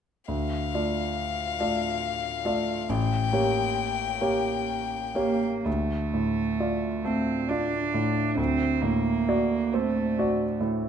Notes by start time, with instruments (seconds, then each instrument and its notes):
0.28 grand piano D2, violin F5
0.74 grand piano A3 F4 D5
1.60 grand piano A3 F4 D5
2.45 grand piano A3 F4 D5
2.89 grand piano A1, violin G5
3.33 grand piano A#3 G4 C#5
4.21 grand piano A#3 G4 C#5
5.15 grand piano A#3 G4 C#5, cello A#3
5.65 grand piano D2, cello A3
6.14 grand piano A2
6.60 grand piano F4 D5
7.05 grand piano A3, cello C4
7.49 cello D4, grand piano F4 D5
7.94 grand piano A2
8.37 grand piano D2, cello C4
8.82 grand piano A2, cello A#3
9.28 grand piano F#4 D5
9.73 cello A3, grand piano C4
10.19 grand piano F#4 D5
10.61 grand piano A2